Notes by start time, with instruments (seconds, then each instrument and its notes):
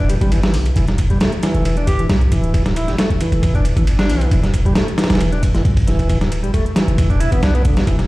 Already playing: 808-style bass E1
0.09 tonewheel organ G3, closed hi-hat, ride
0.21 808-style bass G1, tonewheel organ G3, closed hi-hat, ride
0.32 tonewheel organ E3, closed hi-hat, ride
0.43 tonewheel organ E3, snare, closed hi-hat
0.53 808-style bass B1, tonewheel organ D3, closed hi-hat, open hi-hat
0.66 closed hi-hat, ride
0.76 808-style bass E1, tonewheel organ E3, kick, closed hi-hat, ride
0.88 snare, closed hi-hat
0.98 kick, closed hi-hat, ride
1.10 808-style bass G1, tonewheel organ G3, kick, closed hi-hat
1.21 tonewheel organ A3, snare, closed hi-hat, ride
1.32 closed hi-hat
1.43 tonewheel organ E3, snare, closed hi-hat, ride
1.55 808-style bass E1, closed hi-hat
1.65 tonewheel organ E3, closed hi-hat, ride
1.77 tonewheel organ D4, closed hi-hat
1.87 alto saxophone G4, kick, closed hi-hat, ride
1.99 tonewheel organ E3, closed hi-hat
2.09 808-style bass B1, snare, closed hi-hat, ride
2.21 closed hi-hat
2.32 808-style bass D1, tonewheel organ E3, kick, closed hi-hat, ride
2.44 closed hi-hat
2.54 tonewheel organ E3, kick, closed hi-hat, ride
2.66 snare, closed hi-hat
2.76 alto saxophone E4, closed hi-hat, ride
2.87 808-style bass G1, tonewheel organ G3, snare, closed hi-hat
2.98 tonewheel organ A3, snare, closed hi-hat, ride
3.10 kick, closed hi-hat
3.21 tonewheel organ E3, closed hi-hat, ride
3.32 808-style bass E1, closed hi-hat, ride
3.43 tonewheel organ E3, kick, closed hi-hat, ride
3.54 tonewheel organ D4, kick, closed hi-hat
3.65 closed hi-hat, ride
3.76 808-style bass G1, tonewheel organ E3, closed hi-hat, ride
3.87 closed hi-hat, ride
3.98 alto saxophone D4, snare, closed hi-hat
4.09 808-style bass B1, tonewheel organ E3, closed hi-hat, open hi-hat
4.21 closed hi-hat, ride
4.31 808-style bass E1, tonewheel organ E3, kick, closed hi-hat, ride
4.43 snare, closed hi-hat
4.54 kick, closed hi-hat, ride
4.65 808-style bass G1, tonewheel organ G3, kick, closed hi-hat
4.75 tonewheel organ A3, snare, closed hi-hat, ride
4.88 closed hi-hat
4.98 tonewheel organ E3, snare, closed hi-hat, ride
5.04 snare, ride
5.10 808-style bass E1, snare, closed hi-hat, ride
5.15 snare, ride
5.21 tonewheel organ E3, closed hi-hat, ride
5.32 tonewheel organ D4, closed hi-hat
5.43 kick, closed hi-hat, ride
5.54 tonewheel organ E3, snare, closed hi-hat
5.65 808-style bass B1, kick, closed hi-hat, ride
5.77 kick, closed hi-hat, ride
5.87 808-style bass D1, tonewheel organ E3, snare, closed hi-hat
5.99 kick, closed hi-hat, ride
6.09 tonewheel organ E3, kick, closed hi-hat, ride
6.21 snare, closed hi-hat
6.32 closed hi-hat, ride
6.43 808-style bass G1, tonewheel organ G3, closed hi-hat
6.54 tonewheel organ A3, kick, closed hi-hat, ride
6.66 closed hi-hat
6.76 tonewheel organ E3, snare, closed hi-hat, ride
6.88 808-style bass E1, closed hi-hat
6.98 tonewheel organ E3, kick, closed hi-hat, ride
7.10 tonewheel organ D4, kick, closed hi-hat
7.20 tonewheel organ E4, closed hi-hat, ride
7.32 808-style bass G1, tonewheel organ B3, closed hi-hat, ride
7.42 808-style bass B1, tonewheel organ D4, snare, closed hi-hat, ride
7.55 tonewheel organ B3, closed hi-hat
7.65 808-style bass G1, tonewheel organ D3, kick, closed hi-hat, ride
7.77 snare, closed hi-hat, ride
7.87 808-style bass E1, tonewheel organ E3, kick, closed hi-hat, ride
7.99 snare, closed hi-hat